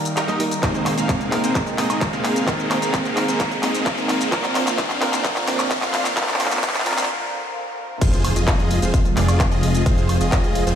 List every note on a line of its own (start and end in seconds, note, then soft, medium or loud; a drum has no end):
0.00 4.28 D#3 medium
0.00 0.26 G3 medium
0.00 0.26 A#3 medium
0.00 0.59 A#3 medium
0.00 0.26 D#4 medium
0.00 0.59 G4 medium
0.00 0.27 A#4 medium
0.00 0.59 A#4 medium
0.00 riser medium
0.05 closed hi-hat soft
0.05 shaker medium
0.17 0.42 D#4 medium
0.17 0.42 G4 medium
0.17 0.42 A#4 medium
0.17 clap medium
0.17 closed hi-hat soft
0.17 shaker medium
0.28 0.38 G3 medium
0.28 0.38 A#3 medium
0.28 0.38 D#4 medium
0.28 0.39 D#5 loud
0.28 closed hi-hat soft
0.28 shaker soft
0.39 0.60 G3 medium
0.39 0.60 A#3 medium
0.39 0.60 D#4 medium
0.39 0.61 A#4 loud
0.39 open hi-hat medium
0.51 closed hi-hat soft
0.51 shaker medium
0.62 1.29 G#3 medium
0.62 0.95 A#3 medium
0.62 1.29 C4 medium
0.62 0.95 C4 medium
0.62 7.97 C4 medium
0.62 0.95 D#4 medium
0.62 1.30 D#4 medium
0.62 0.95 G#4 medium
0.62 4.29 G#4 medium
0.62 7.97 A#4 medium
0.62 1.30 A#4 medium
0.62 0.95 C5 medium
0.62 kick loud
0.62 clap medium
0.62 closed hi-hat soft
0.62 shaker medium
0.75 closed hi-hat soft
0.75 shaker soft
0.86 clap medium
0.86 open hi-hat loud
0.86 high woodblock medium
0.98 1.41 A#3 medium
0.98 1.41 C4 medium
0.98 1.41 D#4 medium
0.98 1.41 G#4 medium
0.98 1.41 F5 medium
0.98 closed hi-hat soft
0.98 shaker medium
1.09 kick loud
1.09 clap medium
1.09 closed hi-hat soft
1.09 shaker medium
1.21 closed hi-hat soft
1.21 shaker soft
1.31 2.44 G#3 medium
1.31 2.45 C4 medium
1.31 2.45 D#4 medium
1.31 2.46 A#4 medium
1.31 clap medium
1.31 open hi-hat medium
1.44 1.59 A#3 medium
1.44 1.59 C4 medium
1.44 1.59 D#4 medium
1.44 1.59 G#4 medium
1.44 1.59 C5 loud
1.44 closed hi-hat soft
1.44 shaker medium
1.55 kick loud
1.55 clap medium
1.55 closed hi-hat soft
1.55 shaker medium
1.67 closed hi-hat soft
1.67 shaker soft
1.78 2.03 A#3 medium
1.78 2.03 C4 medium
1.78 2.03 D#4 medium
1.78 2.03 G#4 medium
1.78 2.03 D#5 medium
1.78 clap medium
1.78 open hi-hat loud
1.90 closed hi-hat soft
1.90 high woodblock medium
1.90 shaker medium
2.01 kick loud
2.01 clap medium
2.01 closed hi-hat medium
2.01 shaker medium
2.13 2.45 A#3 medium
2.13 2.45 C4 medium
2.13 2.45 D#4 medium
2.13 2.45 G#4 medium
2.13 2.45 F5 loud
2.13 closed hi-hat soft
2.13 shaker soft
2.25 clap medium
2.25 open hi-hat medium
2.36 closed hi-hat soft
2.36 shaker medium
2.47 3.14 G#3 medium
2.47 2.79 A#3 medium
2.47 3.14 C4 medium
2.47 2.79 C4 medium
2.47 2.79 D#4 medium
2.47 3.14 D#4 medium
2.47 2.79 G#4 medium
2.47 3.15 A#4 medium
2.47 2.79 C5 medium
2.47 kick loud
2.47 clap medium
2.47 closed hi-hat soft
2.47 shaker medium
2.59 closed hi-hat soft
2.59 shaker soft
2.71 clap medium
2.71 open hi-hat loud
2.71 high woodblock medium
2.82 3.26 A#3 medium
2.82 3.26 C4 medium
2.82 3.26 D#4 medium
2.82 3.26 G#4 medium
2.82 3.26 F5 medium
2.82 closed hi-hat medium
2.82 shaker medium
2.94 kick loud
2.94 clap medium
2.94 closed hi-hat medium
2.94 shaker medium
3.05 closed hi-hat soft
3.05 shaker soft
3.16 4.29 G#3 medium
3.16 4.29 C4 medium
3.16 4.30 D#4 medium
3.16 4.30 A#4 medium
3.16 clap medium
3.16 open hi-hat medium
3.28 3.44 A#3 medium
3.28 3.44 C4 medium
3.28 3.44 D#4 medium
3.28 3.44 G#4 medium
3.28 3.44 C5 loud
3.28 closed hi-hat medium
3.28 shaker medium
3.40 kick loud
3.40 clap medium
3.40 closed hi-hat medium
3.40 shaker medium
3.52 closed hi-hat soft
3.52 shaker soft
3.63 3.88 A#3 medium
3.63 3.88 C4 medium
3.63 3.88 D#4 medium
3.63 3.88 G#4 medium
3.63 3.88 D#5 medium
3.63 clap medium
3.63 open hi-hat loud
3.75 closed hi-hat soft
3.75 shaker medium
3.86 kick loud
3.86 clap medium
3.86 closed hi-hat medium
3.86 shaker medium
3.98 4.29 A#3 medium
3.98 4.29 C4 medium
3.98 4.29 D#4 medium
3.98 4.29 G#4 medium
3.98 4.29 F5 loud
3.98 closed hi-hat soft
3.98 shaker soft
4.09 clap medium
4.09 open hi-hat medium
4.21 closed hi-hat medium
4.21 shaker medium
4.31 7.98 D3 medium
4.31 4.98 F3 medium
4.31 4.64 A#3 medium
4.31 4.99 C4 medium
4.31 4.64 C4 medium
4.31 4.64 D4 medium
4.31 4.99 D4 medium
4.31 4.64 F4 medium
4.31 7.98 F4 medium
4.31 4.99 A#4 medium
4.31 4.64 C5 medium
4.31 kick loud
4.31 clap medium
4.31 closed hi-hat medium
4.31 shaker medium
4.44 clap medium
4.44 closed hi-hat soft
4.44 shaker soft
4.55 clap medium
4.55 open hi-hat loud
4.55 high woodblock medium
4.67 5.10 A#3 medium
4.67 5.10 C4 medium
4.67 5.10 D4 medium
4.67 5.10 F4 medium
4.67 5.10 F5 medium
4.67 clap medium
4.67 closed hi-hat medium
4.67 shaker medium
4.78 kick loud
4.78 clap medium
4.78 closed hi-hat medium
4.78 shaker medium
4.90 clap medium
4.90 closed hi-hat soft
4.90 shaker soft
5.00 6.13 F3 medium
5.00 6.14 C4 medium
5.00 6.14 D4 medium
5.00 6.15 A#4 medium
5.00 clap medium
5.00 open hi-hat medium
5.13 5.28 A#3 medium
5.13 5.28 C4 medium
5.13 5.28 D4 medium
5.13 5.28 F4 medium
5.13 5.28 C5 loud
5.13 clap medium
5.13 closed hi-hat medium
5.13 shaker medium
5.24 kick loud
5.24 clap medium
5.24 closed hi-hat medium
5.24 shaker medium
5.36 clap medium
5.36 closed hi-hat soft
5.36 shaker soft
5.48 5.72 A#3 medium
5.48 5.72 C4 medium
5.48 5.72 D4 medium
5.48 5.72 F4 medium
5.48 5.72 D5 medium
5.48 clap loud
5.48 open hi-hat loud
5.59 clap medium
5.59 closed hi-hat medium
5.59 high woodblock medium
5.59 shaker medium
5.71 kick loud
5.71 clap loud
5.71 closed hi-hat medium
5.71 shaker medium
5.82 6.14 A#3 medium
5.82 6.14 C4 medium
5.82 6.14 D4 medium
5.82 6.14 F4 medium
5.82 6.14 F5 loud
5.82 clap medium
5.82 closed hi-hat soft
5.82 shaker soft
5.94 clap loud
5.94 open hi-hat medium
6.05 clap medium
6.05 closed hi-hat medium
6.05 shaker medium
6.16 6.83 F3 medium
6.16 6.49 A#3 medium
6.16 6.83 C4 medium
6.16 6.49 C4 medium
6.16 6.49 D4 medium
6.16 6.84 D4 medium
6.16 6.49 F4 medium
6.16 6.84 A#4 medium
6.16 6.49 C5 medium
6.16 kick loud
6.16 clap loud
6.16 closed hi-hat medium
6.16 shaker medium
6.23 clap medium
6.28 clap medium
6.28 closed hi-hat soft
6.28 shaker soft
6.34 clap medium
6.40 clap loud
6.40 open hi-hat loud
6.40 high woodblock medium
6.46 clap medium
6.51 6.95 A#3 medium
6.51 6.95 C4 medium
6.51 6.95 D4 medium
6.51 6.95 F4 medium
6.51 6.95 F5 medium
6.51 clap medium
6.51 closed hi-hat medium
6.51 shaker medium
6.57 clap medium
6.63 kick loud
6.63 clap loud
6.63 closed hi-hat medium
6.63 shaker medium
6.69 clap medium
6.75 clap medium
6.75 closed hi-hat soft
6.75 shaker soft
6.80 clap medium
6.85 7.09 F3 medium
6.85 7.09 C4 medium
6.85 7.09 D4 medium
6.85 7.10 A#4 medium
6.85 clap loud
6.85 open hi-hat medium
6.92 clap medium
6.98 7.09 A#3 medium
6.98 7.09 C4 medium
6.98 7.09 D4 medium
6.98 7.09 F4 medium
6.98 7.09 C5 loud
6.98 clap medium
6.98 closed hi-hat medium
6.98 shaker medium
7.03 clap medium
8.01 8.34 F1 loud
8.01 10.75 C3 medium
8.01 10.75 F3 medium
8.01 10.75 G#3 medium
8.01 8.33 F4 medium
8.01 10.75 F4 loud
8.01 8.33 G#4 medium
8.01 8.33 C5 medium
8.01 kick loud
8.01 closed hi-hat medium
8.01 crash loud
8.01 impact medium
8.01 shaker medium
8.13 closed hi-hat soft
8.13 shaker soft
8.25 open hi-hat loud
8.25 high woodblock medium
8.36 8.80 F1 medium
8.36 8.79 F4 medium
8.36 8.79 G#4 medium
8.36 8.79 D#5 medium
8.36 closed hi-hat medium
8.36 shaker medium
8.48 kick loud
8.48 clap loud
8.48 closed hi-hat medium
8.48 shaker medium
8.59 closed hi-hat soft
8.59 shaker soft
8.71 open hi-hat medium
8.82 9.15 F1 loud
8.82 8.98 F4 medium
8.82 8.98 G#4 medium
8.82 8.98 C5 loud
8.82 closed hi-hat medium
8.82 shaker medium
8.94 kick loud
8.94 closed hi-hat medium
8.94 shaker medium
9.05 closed hi-hat soft
9.05 shaker soft
9.17 9.49 F1 loud
9.17 9.42 F4 medium
9.17 9.42 G#4 medium
9.17 9.42 D5 medium
9.17 clap medium
9.17 open hi-hat loud
9.28 closed hi-hat medium
9.28 high woodblock medium
9.28 shaker medium
9.40 kick loud
9.40 clap loud
9.40 closed hi-hat medium
9.40 shaker medium
9.51 9.84 F1 medium
9.51 9.83 F4 medium
9.51 9.83 G#4 medium
9.51 9.83 D#5 loud
9.51 closed hi-hat soft
9.51 shaker soft
9.63 open hi-hat medium
9.75 closed hi-hat medium
9.75 shaker medium
9.86 10.18 F1 loud
9.86 10.18 F4 medium
9.86 10.18 G#4 medium
9.86 10.18 C5 medium
9.86 kick loud
9.86 closed hi-hat medium
9.86 shaker medium
9.98 closed hi-hat soft
9.98 shaker soft
10.09 open hi-hat loud
10.09 high woodblock medium
10.21 10.65 F1 loud
10.21 10.64 F4 medium
10.21 10.64 G#4 medium
10.21 10.64 D#5 medium
10.21 closed hi-hat medium
10.21 shaker medium
10.32 kick loud
10.32 clap loud
10.32 closed hi-hat medium
10.32 shaker medium
10.44 closed hi-hat soft
10.44 shaker soft
10.55 open hi-hat medium
10.67 10.75 F1 loud
10.67 10.75 F4 medium
10.67 10.75 G#4 medium
10.67 10.75 C5 loud
10.67 closed hi-hat medium
10.67 shaker medium